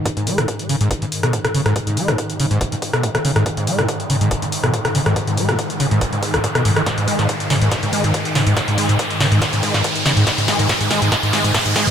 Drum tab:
HH |xxoxxxoxxxoxxxox|xxoxxxoxxxoxxxox|xxoxxxoxxxoxxxox|xxoxxxoxxxoxxxox|
SD |---r-------r-r-r|---r-------r-r-r|---r-------r-r-r|---r-------r-r-r|
BD |o---o---o---o---|o---o---o-o-o---|o---o---o---o---|o---o---o-o-o---|

HH |xxoxxxoxxxoxxxox|xxoxxxoxxxoxxxox|xxoxxxoxxxoxxxox|
SD |o--o--o-o-----o-|o-----o-o--o--o-|o-o-o-o-o-o-o-o-|
BD |o---o---o---o---|o---o---o-o-o---|o---o---o---o---|